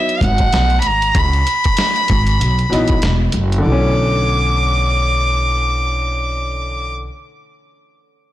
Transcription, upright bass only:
0.21 G#1
0.53 B1
0.84 G#1
1.15 C#2
2.10 G#1
2.40 B1
2.71 A#1
3.03 E1
3.34 F#1
3.66 B1

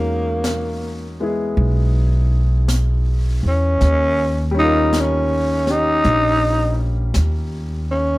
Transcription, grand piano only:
Already playing: G#3 C#4 D#4 F#4 A#4
1.20 G#3 B3 E4 G#4
4.51 G3 C#4
4.57 D#4 F4
4.62 A#4
5.67 C#4 G4

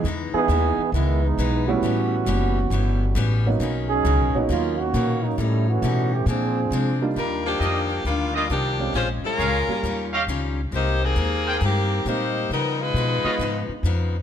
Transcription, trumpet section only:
7.59 F4 G4 D5 D#5
8.34 F4 G4 D5 D#5
9.38 G#4 A#4 C#5 F5
10.12 G4 C#5 D#5 F5
11.46 G#4 A#4 C5 G5
13.24 F4 B4 C#5 D#5

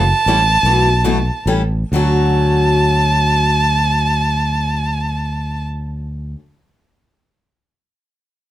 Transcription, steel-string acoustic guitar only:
0.27 E3 G3 C#4 E4 A4
0.65 B2 E3 A3 E4 F#4
1.04 B2 E3 A3 E4 F#4
1.47 E3 G3 C#4 E4 A4
1.93 D3 F#3 A3 C#4 F#4

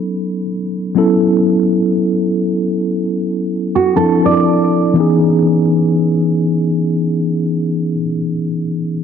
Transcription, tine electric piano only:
Already playing: F#3 B3 C#4 D#4 A4
0.95 F#3 B3 C#4 E4 A4
3.96 F3 C4 D4 E4 A4
4.93 E3 B3 C#4
4.98 D#4 G#4

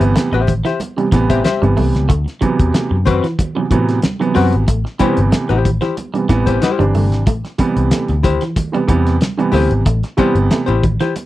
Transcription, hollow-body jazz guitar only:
0.33 G4 C5 E5
0.65 G4 C5 E5
1.30 G4 C5 E5
1.44 G4 C5 E5
3.05 C4 F#4 B4
4.35 C4 F#4 B4
5.00 E4 G4 C5
5.49 E4 G4 C5
5.81 E4 G4 C5
6.46 E4 G4 C5
6.62 E4 G4 C5
8.23 E4 G4 C5
9.52 E4 G4 C5
10.17 E4 G4 C5
10.66 E4 G4 C5
11.00 E4 G4 C5

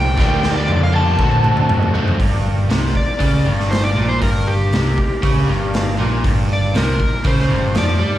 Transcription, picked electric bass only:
Already playing: C2
0.17 D2
0.69 F2
1.19 D2
1.70 F#2
2.20 G1
2.69 C2
2.95 muted picked electric bass stroke
3.20 C#2
3.46 G1
3.96 A#1
4.22 G1
4.72 C2
4.97 muted picked electric bass stroke
5.23 C#2
5.49 G1
6.00 A#1
6.25 G1
6.75 C2
7.00 muted picked electric bass stroke
7.25 C#2
7.50 G1
7.75 F2
8.02 G2

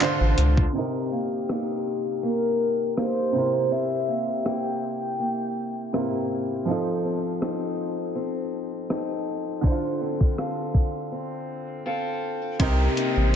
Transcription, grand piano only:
0.00 D3 D4 F4 C5
0.73 C3 C4 D#4
0.78 A#4
3.32 C3 C4 E4
3.38 A#4
5.93 C3 C4 E4 A#4
6.65 F3 C4 D#4
6.71 A4
9.61 D3 D4 E4
9.67 C5
9.72 F4
12.59 C3 C4 D#4 A#4

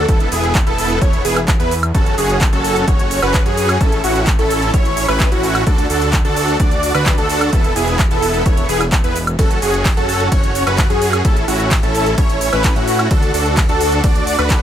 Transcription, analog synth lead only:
0.08 A4
0.32 G#4
0.67 A4
1.02 C#5
1.25 G#4
1.60 B4
1.95 A4
2.18 G#4
2.53 A4
2.87 C#5
3.22 B4
3.46 G#4
3.81 A4
4.04 F#4
4.39 A4
4.74 C#5
5.08 B4
5.32 F#4
5.66 A4
5.90 A4
6.25 A4
6.60 D5
6.94 B4
7.18 A4
7.53 A4
7.76 G#4
8.11 A4
8.46 C#5
8.69 G#4
9.04 B4
9.39 A4
9.62 G#4
9.97 A4
10.32 C#5
10.66 B4
10.90 G#4
11.25 A4
11.48 F#4
11.83 A4
12.18 C#5
12.53 B4
12.76 F#4
13.11 A4
13.34 A4
13.69 A4
14.04 D5
14.39 B4

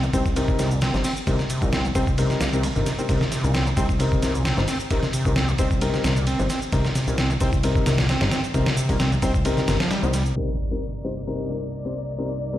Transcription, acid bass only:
0.03 C3
0.13 C4
0.36 C3
0.48 C3
0.59 C3
0.71 A#2
0.82 C4
0.94 C3
1.04 C4
1.27 C3
1.39 C3
1.50 C3
1.62 A#2
1.73 C4
1.85 C3
1.95 C4
2.18 C3
2.30 C3
2.41 A#3
2.53 C3
2.64 C4
2.76 C3
2.86 C3
2.98 C4
3.09 C3
3.21 C3
3.31 C3
3.43 A#2
3.54 C4
3.66 C3
3.77 C4
3.99 C3
4.11 C3
4.22 C3
4.34 A#2
4.45 C4
4.57 C3
4.68 C4
4.91 C3
5.03 C3
5.13 C3
5.26 A#2
5.36 C4
5.48 C3
5.59 C4
5.82 C3
5.94 C3
6.05 C3
6.17 A#2
6.27 C4
6.39 C3
6.50 C4
6.73 C3
6.85 C3
6.95 C3
7.08 A#2
7.18 C4
7.30 C3
7.41 C4
7.64 C3
7.76 C3
7.87 C3
7.98 A#2
8.09 C4
8.21 C3
8.31 C4
8.54 C3
8.66 C3
8.77 C3
8.89 A#2
8.99 C4
9.12 C3
9.22 C4
9.45 C3
9.57 C3
9.68 C3
9.80 F3
9.90 G3
10.02 C4
10.13 G3

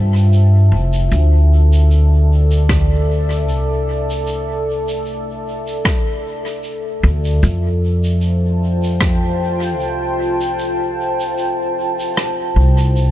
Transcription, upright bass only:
Already playing: G2
0.72 F1
1.12 D2
3.48 C2
7.03 D2
7.43 F2
9.80 C2
12.56 C2

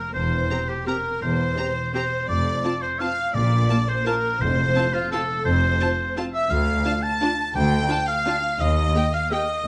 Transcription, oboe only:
Already playing: A#4
0.14 C5
0.69 G4
0.87 A#4
1.22 C5
1.94 C5
2.29 D5
2.82 C5
3.00 F5
3.34 D5
3.89 C5
4.07 A#4
4.41 C5
4.94 F4
5.11 A4
5.45 C5
6.34 E5
6.50 F5
7.03 A5
7.55 G5
8.08 F5
8.60 D#5
9.14 F5
9.32 D#5

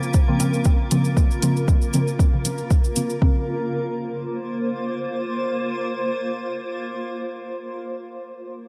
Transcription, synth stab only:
Already playing: C#3 F3 A#3 C4
0.28 C#3 F3 A#3 C4
0.40 C#3 F3 A#3 C4
0.91 C#3 F3 A#3 C4
1.42 C#3 F3 A#3 C4
1.93 C#3 F3 A#3 C4
2.33 C#3 F3 A#3 C4
2.45 C#3 F3 A#3 C4
2.96 C#3 F3 A#3 C4
3.22 C#3 F3 A#3 C4

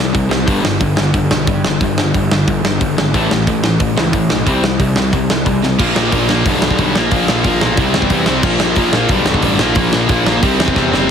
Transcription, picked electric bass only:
0.00 C2
0.15 C2
0.32 C2
0.48 G1
0.65 G1
0.81 G1
0.97 G1
1.14 G1
1.31 B1
1.47 G2
1.64 G1
1.81 G1
2.14 G1
2.31 G1
2.47 G1
2.63 G1
2.81 G1
2.98 G#1
3.14 A1
3.31 A1
3.47 A1
3.64 A1
3.80 A1
3.97 C#2
4.13 A2
4.30 B1
4.47 C2
4.79 C2
4.96 C2
5.13 C2
5.29 C2
5.46 C2
5.63 C2
5.79 A#1
5.95 A#1
6.12 A#1
6.29 A#1
6.45 B1
6.61 B1
6.78 B1
6.96 A#1
7.11 A#1
7.29 A#1
7.44 A#1
7.61 B1
7.77 C2
7.94 E2
8.10 E2
8.26 C2
8.43 A#1
8.59 A#1
8.77 A#1
8.92 A#1
9.09 B1
9.25 B1
9.43 A1
9.59 A#1
9.76 A#1
9.92 A#1
10.10 A#1
10.25 A#1
10.43 C2
10.59 E2
10.76 E2
10.92 F#1

